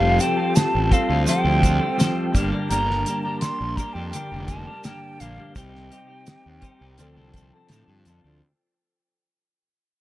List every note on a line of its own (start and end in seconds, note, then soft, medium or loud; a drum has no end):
0.00 0.18 F1 medium
0.00 0.55 F3 medium
0.00 0.19 G3 medium
0.00 0.19 C4 medium
0.00 2.30 C4 medium
0.00 0.20 F4 medium
0.00 2.31 F4 medium
0.00 6.94 G4 medium
0.00 0.21 A4 medium
0.00 2.31 A4 medium
0.00 2.31 C5 medium
0.00 0.22 F5 medium
0.19 0.90 G3 medium
0.19 0.38 C4 medium
0.19 0.38 F4 medium
0.19 0.36 A4 medium
0.19 0.57 G5 medium
0.19 closed hi-hat medium
0.19 shaker medium
0.37 0.91 C4 medium
0.37 0.91 F4 medium
0.37 0.92 A4 medium
0.56 0.94 A5 medium
0.56 snare loud
0.56 closed hi-hat medium
0.56 shaker medium
0.75 0.91 A1 medium
0.90 1.28 G3 medium
0.90 1.11 C4 medium
0.90 1.09 F4 medium
0.90 1.08 A4 medium
0.90 1.27 F5 medium
0.90 kick medium
0.90 closed hi-hat medium
0.90 shaker medium
1.09 1.26 D2 medium
1.09 1.28 C4 medium
1.09 1.28 F4 medium
1.09 1.29 A4 medium
1.27 1.81 F3 medium
1.27 1.61 G3 medium
1.27 1.46 C4 medium
1.27 1.44 F4 medium
1.27 1.42 A4 medium
1.27 2.30 G5 medium
1.27 closed hi-hat medium
1.27 shaker medium
1.43 1.78 D2 medium
1.43 1.62 C4 medium
1.43 1.63 F4 medium
1.43 1.64 A4 medium
1.62 1.98 G3 medium
1.62 1.81 C4 medium
1.62 1.80 F4 medium
1.62 1.78 A4 medium
1.62 kick medium
1.62 closed hi-hat medium
1.62 shaker medium
1.79 1.98 C4 medium
1.79 1.99 F4 medium
1.79 1.99 A4 medium
1.97 2.32 F3 medium
1.97 2.34 G3 medium
1.97 2.33 C4 medium
1.97 2.33 F4 medium
1.97 2.33 A4 medium
1.97 snare loud
1.97 closed hi-hat medium
1.97 shaker medium
2.33 2.51 G1 medium
2.33 2.68 G2 medium
2.33 2.69 D3 medium
2.33 2.53 G3 medium
2.33 5.53 A#3 medium
2.33 2.52 A#3 loud
2.33 5.53 D4 medium
2.33 2.51 D4 medium
2.33 2.50 G4 medium
2.33 5.53 A#4 medium
2.33 5.53 D5 medium
2.33 kick loud
2.33 closed hi-hat medium
2.33 shaker medium
2.52 2.69 G3 medium
2.52 2.71 A#3 medium
2.52 2.71 D4 medium
2.52 2.71 G4 medium
2.69 3.04 G1 medium
2.69 3.41 G2 medium
2.69 3.42 D3 medium
2.69 3.05 G3 medium
2.69 3.07 A#3 loud
2.69 3.08 D4 medium
2.69 3.09 G4 medium
2.69 3.20 A#5 loud
2.69 closed hi-hat medium
2.69 shaker medium
2.91 snare soft
3.06 3.26 G3 medium
3.06 3.26 A#3 medium
3.06 3.24 D4 medium
3.06 3.24 G4 medium
3.06 closed hi-hat medium
3.06 shaker medium
3.23 3.79 D4 medium
3.23 3.80 G4 medium
3.23 3.40 A#5 medium
3.27 3.77 G3 medium
3.27 3.78 A#3 medium
3.40 3.78 C6 medium
3.40 snare loud
3.40 closed hi-hat medium
3.40 shaker medium
3.61 3.77 A#1 medium
3.76 3.97 G3 medium
3.76 3.96 A#3 medium
3.76 3.95 D4 medium
3.76 3.95 A#5 medium
3.76 kick medium
3.76 closed hi-hat medium
3.76 shaker medium
3.81 3.94 G4 medium
3.93 4.12 F2 medium
3.93 4.14 A#3 medium
3.93 4.15 D4 medium
3.93 4.15 G4 medium
3.93 4.09 G5 medium
3.98 4.14 G3 medium
4.09 4.67 G2 medium
4.09 4.47 G5 medium
4.09 closed hi-hat medium
4.14 4.67 D3 medium
4.14 4.33 G3 medium
4.14 4.33 A#3 loud
4.14 4.31 D4 medium
4.14 4.30 G4 loud
4.14 shaker medium
4.31 4.65 F1 medium
4.31 4.47 G3 medium
4.31 4.48 A#3 medium
4.31 4.50 D4 medium
4.31 4.50 G4 medium
4.45 4.69 G3 medium
4.45 4.86 A5 medium
4.45 kick medium
4.45 closed hi-hat medium
4.45 shaker medium
4.50 4.69 A#3 medium
4.50 4.68 D4 medium
4.50 4.66 G4 medium
4.67 4.84 G3 medium
4.67 4.84 A#3 medium
4.67 4.85 D4 medium
4.67 4.86 G4 medium
4.84 5.54 G2 medium
4.84 5.54 D3 medium
4.84 5.19 G3 medium
4.84 5.20 A#3 medium
4.84 5.21 D4 medium
4.84 5.22 G4 medium
4.84 5.22 G5 medium
4.84 snare loud
4.84 closed hi-hat medium
4.84 shaker medium
5.20 5.37 A#1 medium
5.20 5.38 G3 medium
5.20 5.38 A#3 medium
5.20 5.37 D4 medium
5.20 5.35 G4 medium
5.20 5.56 F5 medium
5.20 closed hi-hat medium
5.20 shaker medium
5.37 5.55 G3 medium
5.37 5.54 A#3 medium
5.37 5.54 D4 medium
5.37 5.53 G4 medium
5.55 5.89 C2 medium
5.55 6.27 C3 medium
5.55 5.89 G3 medium
5.55 5.90 C4 medium
5.55 6.98 C4 medium
5.55 6.98 D#4 medium
5.55 5.91 D#4 medium
5.55 5.92 G4 loud
5.55 8.39 C5 medium
5.55 6.98 D#5 medium
5.55 7.67 G5 medium
5.55 kick loud
5.55 closed hi-hat medium
5.55 shaker medium
5.75 snare soft
5.91 6.45 G3 medium
5.91 6.09 C4 medium
5.91 6.08 D#4 medium
5.91 6.06 G4 medium
5.91 closed hi-hat medium
5.91 shaker medium
6.07 6.61 C4 medium
6.07 6.62 D#4 medium
6.07 6.63 G4 medium
6.27 snare loud
6.27 closed hi-hat medium
6.27 shaker medium
6.46 6.62 D#2 medium
6.61 6.96 G3 medium
6.61 6.81 C4 medium
6.61 6.79 D#4 medium
6.61 6.78 G4 medium
6.61 kick medium
6.61 closed hi-hat medium
6.61 shaker medium
6.79 6.98 C2 medium
6.79 6.97 C4 medium
6.79 6.96 D#4 medium
6.79 6.96 G4 medium
6.98 7.16 D2 loud
6.98 7.52 D3 medium
6.98 7.32 F3 medium
6.98 7.18 C4 medium
6.98 7.16 D4 medium
6.98 8.41 D4 medium
6.98 8.42 F4 medium
6.98 8.41 A4 medium
6.98 7.15 A4 loud
6.98 8.41 D5 medium
6.98 closed hi-hat medium
6.98 shaker medium
7.16 7.50 C2 medium
7.16 7.33 C4 medium
7.16 7.35 D4 medium
7.16 7.35 A4 medium
7.33 7.70 F3 medium
7.33 7.55 C4 medium
7.33 7.54 D4 medium
7.33 7.52 A4 medium
7.33 kick medium
7.33 closed hi-hat medium
7.33 shaker medium
7.53 7.71 C4 medium
7.53 7.71 D4 medium
7.53 7.72 A4 medium
7.69 7.86 A2 medium
7.69 8.40 D3 medium
7.69 8.05 F3 medium
7.69 8.06 C4 medium
7.69 8.07 D4 medium
7.69 snare loud
7.69 closed hi-hat medium
7.69 shaker medium
7.73 8.08 A4 medium
7.88 8.04 G2 medium
8.05 8.22 F2 medium
8.05 8.40 F3 medium
8.05 8.26 C4 medium
8.05 8.25 D4 medium
8.05 closed hi-hat medium
8.05 shaker medium
8.10 8.23 A4 medium
8.24 8.40 D2 medium
8.24 8.41 C4 medium
8.24 8.41 D4 medium
8.24 8.40 A4 medium